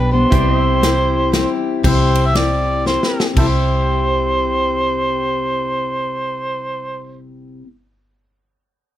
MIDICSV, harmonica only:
0, 0, Header, 1, 2, 480
1, 0, Start_track
1, 0, Key_signature, 0, "major"
1, 0, Tempo, 507614
1, 305, Time_signature, 3, 2, 24, 8
1, 8485, End_track
2, 0, Start_track
2, 0, Title_t, "Harmonica"
2, 0, Program_c, 0, 22
2, 0, Note_on_c, 0, 71, 89
2, 115, Note_off_c, 0, 71, 0
2, 119, Note_on_c, 0, 72, 93
2, 1518, Note_off_c, 0, 72, 0
2, 1753, Note_on_c, 0, 72, 83
2, 2133, Note_on_c, 0, 76, 100
2, 2148, Note_off_c, 0, 72, 0
2, 2227, Note_on_c, 0, 74, 95
2, 2241, Note_off_c, 0, 76, 0
2, 2705, Note_off_c, 0, 74, 0
2, 2710, Note_on_c, 0, 72, 71
2, 3065, Note_off_c, 0, 72, 0
2, 3191, Note_on_c, 0, 64, 56
2, 3191, Note_on_c, 0, 69, 56
2, 3191, Note_on_c, 0, 72, 79
2, 3267, Note_off_c, 0, 64, 0
2, 3269, Note_off_c, 0, 69, 0
2, 6788, Note_off_c, 0, 72, 0
2, 8485, End_track
0, 0, End_of_file